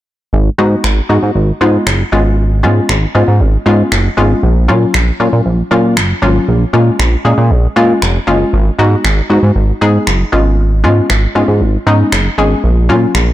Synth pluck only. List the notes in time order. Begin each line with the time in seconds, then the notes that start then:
0.58 G#3 B3 D#4 F#4
1.09 G#3 B3 D#4 F#4
1.61 G#3 B3 D#4 F4
2.12 G#3 B3 C#4 F4
2.63 G#3 B3 C#4 F4
3.15 G#3 B3 C#4 F4
3.66 G#3 B3 C#4 F4
4.17 G#3 B3 C#4 F4
4.68 F#3 A#3 C#4 F4
5.20 F#3 A#3 C#4 F4
5.71 F#3 A#3 C#4 F4
6.22 F#3 A#3 C#4 F4
6.73 G#3 A#3 C#4 F4
7.25 G#3 A#3 C#4 G#4
7.76 G#3 A#3 C#4 F4
8.27 G#3 A#3 C#4 F4
8.79 G#3 B3 D#4 F#4
9.30 G#3 B3 D#4 F#4
9.81 G#3 B3 D#4 G#4
10.32 G#3 B3 C#4 F4
10.84 G#3 B3 C#4 F4
11.35 G#3 B3 C#4 F4
11.87 G#3 B3 C#4 D#4
12.38 G#3 B3 C#4 G#4
12.89 F#3 A#3 C#4 F4